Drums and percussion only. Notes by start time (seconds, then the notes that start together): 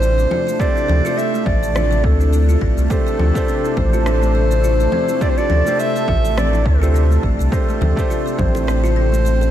0.03 shaker
0.19 shaker
0.31 low conga
0.49 shaker
0.60 kick, shaker
0.77 shaker
0.89 low conga
1.06 shaker
1.19 shaker
1.35 shaker
1.46 kick, low conga
1.63 shaker
1.76 cross-stick, low conga, shaker
1.92 shaker
2.04 kick
2.21 shaker
2.33 shaker
2.49 shaker
2.62 kick
2.78 shaker
2.90 kick, shaker
3.07 shaker
3.19 low conga
3.35 kick, shaker
3.48 shaker
3.65 shaker
3.77 kick, low conga
3.94 shaker
4.06 cross-stick, shaker
4.23 shaker
4.51 shaker
4.64 shaker
4.80 shaker
4.92 low conga
5.09 shaker
5.21 kick, shaker
5.38 shaker
5.50 low conga
5.67 shaker
5.80 shaker
5.96 shaker
6.08 kick, low conga
6.25 shaker
6.38 cross-stick, low conga, shaker
6.54 shaker
6.66 kick
6.83 shaker
6.96 shaker
7.12 shaker
7.23 kick
7.41 shaker
7.52 kick, shaker
7.69 shaker
7.82 low conga
7.97 kick, shaker
8.11 shaker
8.27 shaker
8.39 kick, high conga, low conga
8.55 high bongo, shaker
8.68 cross-stick, shaker
8.85 shaker
9.14 shaker
9.26 shaker
9.41 high bongo, shaker